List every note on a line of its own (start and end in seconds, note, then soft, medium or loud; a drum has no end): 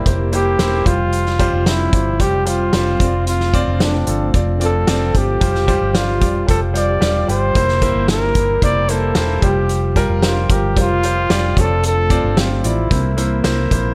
0.00 12.87 C3 medium
0.00 0.84 G3 medium
0.00 0.06 A#3 medium
0.00 0.84 A#3 medium
0.00 0.07 E4 medium
0.00 0.84 E4 medium
0.00 0.88 G4 medium
0.00 2.96 G4 medium
0.00 0.07 C5 medium
0.00 0.88 D5 medium
0.06 0.56 F1 medium
0.06 0.25 A#3 medium
0.06 0.26 E4 medium
0.06 0.26 C5 medium
0.06 kick medium
0.06 closed hi-hat medium
0.32 0.52 A#3 medium
0.32 0.52 E4 medium
0.32 0.88 G4 medium
0.32 0.52 C5 medium
0.32 closed hi-hat medium
0.59 0.84 E1 medium
0.59 0.78 A#3 medium
0.59 0.79 E4 medium
0.59 0.79 C5 loud
0.59 snare medium
0.59 closed hi-hat medium
0.85 1.49 F1 medium
0.85 7.52 F3 medium
0.85 1.29 G3 medium
0.85 2.99 G3 medium
0.85 5.38 C4 medium
0.85 1.29 F4 medium
0.85 1.67 F4 medium
0.85 1.29 C5 medium
0.85 kick medium
0.85 closed hi-hat medium
1.13 closed hi-hat medium
1.26 snare soft
1.39 1.59 G3 medium
1.39 1.59 F4 medium
1.39 1.59 C5 medium
1.39 kick medium
1.39 closed hi-hat soft
1.53 1.91 F1 medium
1.66 1.86 G3 medium
1.66 2.22 E4 medium
1.66 1.86 F4 medium
1.66 1.86 C5 medium
1.66 snare medium
1.66 closed hi-hat medium
1.93 2.20 G1 medium
1.93 2.12 G3 medium
1.93 2.13 F4 medium
1.93 2.13 C5 medium
1.93 kick medium
1.93 closed hi-hat medium
2.20 2.70 F1 medium
2.20 2.39 G3 medium
2.20 2.39 F4 medium
2.20 2.46 G4 loud
2.20 2.40 C5 medium
2.20 kick medium
2.20 closed hi-hat medium
2.45 2.65 G3 medium
2.45 2.66 F4 medium
2.45 3.23 F4 medium
2.45 2.66 C5 medium
2.45 closed hi-hat medium
2.73 2.99 F1 medium
2.73 2.93 G3 medium
2.73 2.93 F4 medium
2.73 2.93 C5 loud
2.73 snare medium
2.73 closed hi-hat medium
2.99 3.63 F1 loud
2.99 5.38 A3 medium
2.99 3.43 C4 medium
2.99 5.38 D4 medium
2.99 3.43 F4 medium
2.99 3.43 D5 medium
2.99 kick medium
2.99 closed hi-hat medium
3.27 3.84 F4 medium
3.27 closed hi-hat medium
3.40 snare soft
3.53 3.73 C4 medium
3.53 3.73 F4 medium
3.53 3.73 D5 loud
3.53 kick medium
3.53 closed hi-hat medium
3.68 4.05 F1 medium
3.80 4.00 C4 medium
3.80 4.35 D4 medium
3.80 4.00 F4 medium
3.80 4.00 D5 medium
3.80 snare medium
3.80 closed hi-hat medium
4.07 4.32 G1 medium
4.07 4.26 C4 medium
4.07 4.27 F4 medium
4.07 4.27 A4 medium
4.07 closed hi-hat medium
4.34 4.84 F1 medium
4.34 4.53 C4 medium
4.34 4.54 F4 medium
4.34 4.54 D5 medium
4.34 kick medium
4.34 closed hi-hat medium
4.60 4.80 C4 medium
4.60 4.80 F4 medium
4.60 4.80 D5 medium
4.60 closed hi-hat medium
4.64 5.19 A4 medium
4.87 5.13 F1 medium
4.87 5.07 C4 medium
4.87 5.07 F4 medium
4.87 5.07 D5 medium
4.87 snare medium
4.87 closed hi-hat medium
5.14 5.40 G1 medium
5.14 5.34 C4 medium
5.14 5.34 F4 medium
5.14 5.97 G4 medium
5.14 5.34 C5 medium
5.14 kick medium
5.14 closed hi-hat medium
5.41 5.79 F1 medium
5.41 5.60 G3 medium
5.41 11.53 G3 medium
5.41 5.60 F4 medium
5.41 7.53 F4 medium
5.41 11.53 G4 medium
5.41 5.61 C5 medium
5.41 kick medium
5.41 closed hi-hat medium
5.55 snare soft
5.67 5.87 G3 medium
5.67 5.87 F4 medium
5.67 5.88 C5 medium
5.67 kick medium
5.67 closed hi-hat soft
5.81 6.22 G1 medium
5.94 6.14 G3 medium
5.94 6.14 F4 soft
5.94 6.48 F4 medium
5.94 6.14 D5 medium
5.94 snare medium
5.94 closed hi-hat medium
6.20 6.47 F1 medium
6.20 6.40 G3 medium
6.20 6.40 F4 soft
6.20 6.41 D5 medium
6.20 kick medium
6.20 closed hi-hat medium
6.47 6.98 F1 medium
6.47 6.67 G3 medium
6.47 6.67 F4 medium
6.47 6.60 A4 medium
6.47 6.67 C5 medium
6.47 kick medium
6.47 closed hi-hat medium
6.73 6.94 G3 medium
6.73 6.94 F4 medium
6.73 6.94 C5 medium
6.73 7.26 D5 medium
6.73 closed hi-hat medium
7.01 7.27 E1 medium
7.01 7.21 G3 medium
7.01 7.21 F4 medium
7.01 7.21 D5 medium
7.01 snare medium
7.01 closed hi-hat medium
7.28 7.54 G1 medium
7.28 7.48 G3 medium
7.28 7.48 F4 medium
7.28 7.48 G4 medium
7.28 8.06 C5 medium
7.28 closed hi-hat medium
7.55 7.93 F1 medium
7.55 7.75 A#3 medium
7.55 9.41 A#3 medium
7.55 7.75 E4 medium
7.55 9.41 E4 medium
7.55 7.75 C5 medium
7.55 kick loud
7.55 closed hi-hat medium
7.68 snare soft
7.82 8.01 A#3 medium
7.82 8.02 E4 medium
7.82 8.02 C5 medium
7.82 kick medium
7.82 closed hi-hat medium
7.96 8.33 G1 medium
8.08 8.28 A#3 medium
8.08 8.28 E4 soft
8.08 8.59 A#4 medium
8.08 8.28 C5 medium
8.08 snare medium
8.08 closed hi-hat medium
8.35 8.60 G1 medium
8.35 8.55 A#3 medium
8.35 8.55 E4 medium
8.35 8.56 A#4 medium
8.35 kick medium
8.35 closed hi-hat medium
8.62 9.12 F1 medium
8.62 8.82 A#3 medium
8.62 8.82 E4 medium
8.62 8.82 C5 medium
8.62 8.91 D5 medium
8.62 kick medium
8.62 closed hi-hat medium
8.89 9.09 A#3 medium
8.89 9.09 E4 medium
8.89 9.45 A4 medium
8.89 9.09 C5 medium
8.89 closed hi-hat medium
9.15 9.41 E1 medium
9.15 9.35 A#3 medium
9.15 9.36 E4 medium
9.15 9.36 C5 medium
9.15 snare medium
9.15 closed hi-hat medium
9.42 10.06 F1 loud
9.42 12.87 F3 medium
9.42 9.86 G3 medium
9.42 12.87 F4 medium
9.42 9.86 F4 medium
9.42 9.97 G4 medium
9.42 9.86 C5 medium
9.42 kick medium
9.42 closed hi-hat medium
9.69 closed hi-hat medium
9.96 10.15 G3 medium
9.96 10.16 F4 medium
9.96 10.16 A#4 loud
9.96 kick medium
9.96 closed hi-hat medium
10.10 10.47 F1 medium
10.22 10.42 G3 medium
10.22 10.42 F4 medium
10.22 10.54 F4 medium
10.22 10.43 C5 medium
10.22 snare medium
10.22 closed hi-hat medium
10.49 10.77 G1 medium
10.49 10.69 G3 medium
10.49 10.69 F4 medium
10.49 10.78 G4 medium
10.49 10.70 A#4 medium
10.49 kick medium
10.49 closed hi-hat medium
10.77 11.27 F1 medium
10.77 10.96 G3 medium
10.77 10.96 F4 medium
10.77 11.61 F4 loud
10.77 10.96 C5 medium
10.77 kick medium
10.77 closed hi-hat medium
11.03 11.23 G3 medium
11.03 11.23 F4 medium
11.03 11.24 C5 medium
11.03 closed hi-hat medium
11.30 11.55 F1 medium
11.30 11.49 G3 medium
11.30 11.50 F4 medium
11.30 11.50 D5 medium
11.30 snare loud
11.30 closed hi-hat medium
11.56 12.20 F1 loud
11.56 12.89 A3 medium
11.56 12.00 C4 medium
11.56 12.89 D4 medium
11.56 12.00 F4 medium
11.56 11.85 A4 medium
11.56 11.64 C#5 medium
11.56 kick medium
11.56 closed hi-hat medium
11.64 12.04 D5 medium
11.83 12.41 A4 loud
11.83 closed hi-hat medium
12.10 12.29 C4 medium
12.10 12.30 F4 medium
12.10 12.30 D5 medium
12.10 kick medium
12.10 closed hi-hat medium
12.24 12.61 G1 medium
12.37 12.57 C4 medium
12.37 12.57 F4 soft
12.37 12.68 F4 medium
12.37 12.57 G4 medium
12.37 snare medium
12.37 closed hi-hat medium
12.64 12.90 A1 medium
12.64 12.83 C4 medium
12.64 13.46 E4 medium
12.64 12.84 F4 medium
12.64 12.84 D5 medium
12.64 closed hi-hat medium
12.91 13.41 C2 loud
12.91 13.67 C3 medium
12.91 13.94 C3 medium
12.91 13.94 E3 medium
12.91 13.94 G3 medium
12.91 13.10 A#3 medium
12.91 13.94 A#3 medium
12.91 13.94 E4 medium
12.91 13.10 E4 medium
12.91 13.11 C5 medium
12.91 kick medium
12.91 closed hi-hat medium
13.17 13.37 A#3 medium
13.17 13.37 E4 medium
13.17 13.37 C5 medium
13.17 closed hi-hat medium
13.44 13.70 C2 medium
13.44 13.63 A#3 medium
13.44 13.64 E4 medium
13.44 13.64 C5 loud
13.44 snare medium
13.44 closed hi-hat medium
13.71 13.94 A#1 medium
13.71 13.91 A#3 medium
13.71 13.91 E4 medium
13.71 13.91 C5 medium
13.71 kick medium
13.71 closed hi-hat medium